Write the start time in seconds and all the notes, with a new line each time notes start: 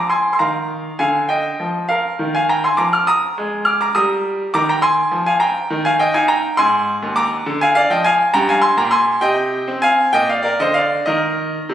Already playing: F3 A#5 D6
0.10 G#5 C6
0.33 C6
0.39 D#3 F5 A#5
0.99 D3 F5 G#5
1.29 D#5 G5
1.60 F3
1.89 A#4 F5
2.19 D#3
2.35 F5 G#5
2.49 G5 A#5
2.64 G#5 C6
2.77 F3 A#5 D6
2.93 D6 F6
3.07 A#5 D#6
3.38 G#3
3.65 D6 F6
3.81 A#5 D6
3.95 G3 A#5 D#6
4.54 D#3 A#5 D6
4.69 G5 A#5
4.82 G#5 C6
5.11 F3
5.26 F5 G#5
5.40 G5 A#5
5.70 D#3
5.85 F5 G#5
5.99 D#5 G5
6.14 D#4 F5 G#5
6.28 G5 A#5
6.57 G#2 G#5 C6
7.02 D#2
7.16 A#5 D6
7.46 D3
7.61 F5 G#5
7.75 D5 F5
7.90 F3 D#5 G5
8.04 F5 G#5
8.34 G2 G5 A#5
8.49 F5 G#5
8.61 G#5 C6
8.77 A#2 G5 A#5
8.91 G#5 C6
9.21 C3 D#5 G5
9.68 C4
9.82 F5 G#5
10.13 A#2 D#5 G5
10.29 D5 F5
10.43 A#4 D5
10.60 D3 C5 D#5
10.74 D5 F5
11.06 D#3 A#4 D#5
11.69 C3